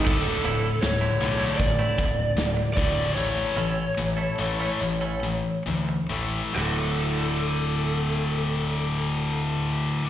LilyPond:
<<
  \new Staff \with { instrumentName = "Lead electric guitar" } { \time 4/4 \key d \major \tempo 4 = 71 a'4 cis''4 d''4. d''8 | cis''2. r4 | a'1 | }
  \new Staff \with { instrumentName = "Clean electric guitar" } { \time 4/4 \key d \major r8 <a, d a e'>16 r8 <a, d a e'>16 r16 <a, d a e'>16 r16 <a, d a e'>16 r4. | r8 <a cis' e' a'>16 r8 <a cis' e' a'>16 r16 <a cis' e' a'>16 r16 <a cis' e' a'>16 r4. | <d, a, d a fis'>1 | }
  \new Staff \with { instrumentName = "Distorted electric guitar" } { \clef bass \time 4/4 \key d \major <d, a, d>8 <d, a,>8 <d, a,>8 <d, a, d>8 <d, a,>8 <d, a,>8 <d, a,>8 <d, a, d>8 | <a, e a>8 <a, e>8 <a, e>8 <a, e a>8 <a, e>8 <a, e>8 <a, e>8 <a, e a>8 | <d, a, d>1 | }
  \new Staff \with { instrumentName = "Picked electric bass" } { \clef bass \time 4/4 \key d \major d,,8 d,,8 d,,8 b,,8 a,,8 d,,8 d,,8 d,,8 | a,,8 a,,8 a,,8 a,,8 a,,4 d,8 a,,8 | d,,1 | }
  \new DrumStaff \with { instrumentName = "Drums" } \drummode { \time 4/4 <cymc bd>8 hh8 <hh sn>8 hh8 <hh bd>8 <hh bd>8 <hh sn>8 <hh bd>8 | hh8 hh8 hh8 hh8 hh8 hh8 hh8 hh8 | r4 r4 r4 r4 | }
>>